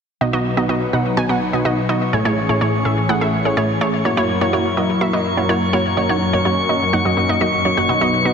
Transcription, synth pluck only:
0.21 B2 B3 D#4 F#4 D#5
0.33 B2 B3 D#4 F#4 D#5
0.57 B2 B3 D#4 F#4 D#5
0.69 B2 B3 D#4 F#4 D#5
0.93 B2 B3 D#4 F#4 F#5
1.17 B2 B3 D#4 F#4 G#5
1.29 B2 B3 D#4 F#4 F#5
1.53 B2 B3 D#4 F#4 D#5
1.65 B2 B3 D#4 F#4 D#5
1.89 B3 D#4 F#4 D#5
2.13 A2 A3 E4 G#4 C#5
2.25 A2 A3 E4 G#4 C#5
2.49 A2 A3 E4 G#4 C#5
2.61 A2 A3 E4 G#4 C#5
2.85 A2 A3 E4 G#4 E5
3.09 A2 A3 E4 G#4 F#5
3.21 A2 A3 E4 G#4 E5
3.45 A2 A3 E4 G#4 C#5
3.57 A2 A3 E4 G#4 C#5
3.81 A3 E4 G#4 C#5
4.05 A#3 E4 F#4 C#5
4.17 A#3 E4 F#4 C#5
4.41 A#3 E4 F#4 C#5
4.53 A#3 E4 F#4 C#5
4.77 A#3 E4 F#4 D#5
5.01 A#3 E4 F#4 E5
5.13 A#3 E4 F#4 D#5
5.37 A#3 E4 F#4 C#5
5.49 A#3 E4 F#4 C#5
5.73 A#3 E4 F#4 C#5
5.97 F#2 A#3 D#4 F#4 C#5
6.09 F#2 A#3 D#4 F#4 C#5
6.33 F#2 A#3 D#4 F#4 C#5
6.45 F#2 A#3 D#4 F#4 C#5
6.69 F#2 A#3 D#4 F#4 D#5
6.93 F#2 A#3 D#4 F#4 F#5
7.05 F#2 A#3 D#4 F#4 D#5
7.17 F#2 A#3 D#4 F#4 D#5
7.29 F#2 A#3 D#4 F#4 D#5
7.41 F#2 A#3 D#4 F#4 D#5
7.65 F#2 A#3 D#4 F#4 C#5
7.77 F#2 A#3 D#4 F#4 F#5
7.89 B2 B3 D#4 F#4 D#5
8.01 B2 B3 D#4 F#4 D#5
8.25 B2 B3 D#4 F#4 D#5

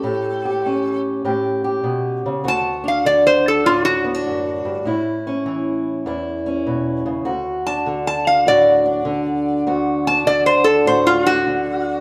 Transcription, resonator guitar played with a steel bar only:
Already playing: A4
2.48 A5
2.88 F5
3.06 D5
3.27 C5
3.48 A4
3.66 F4
3.85 F#4
7.67 A5
8.07 A5
8.27 F5
8.48 D5
10.07 A5
10.27 D5
10.46 C5
10.64 A4
10.87 C5
11.07 F4
11.26 F#4

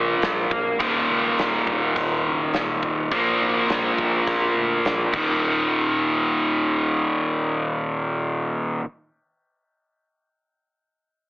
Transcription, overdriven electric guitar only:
Already playing: A#2 F3 A#3
0.80 D#2 A#2 D#3
3.11 A#2 F3 A#3
5.13 D#2 A#2
5.17 D#3

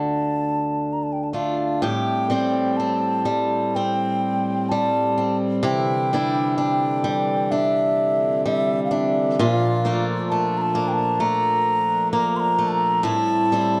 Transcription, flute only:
Already playing: A5
0.93 A#5
1.03 A5
1.13 G5
1.23 A5
1.34 F5
1.82 G5
2.77 A5
3.75 G5
4.69 A5
5.64 G5
6.58 G5
7.51 E5
8.46 E5
8.84 F5
8.93 E5
9.39 F5
10.30 A5
10.58 A5 A#5
10.88 G5
10.93 A5
11.21 A#5
12.12 A#5
12.37 A#5 C6
12.68 A5 A#5
13.04 A5

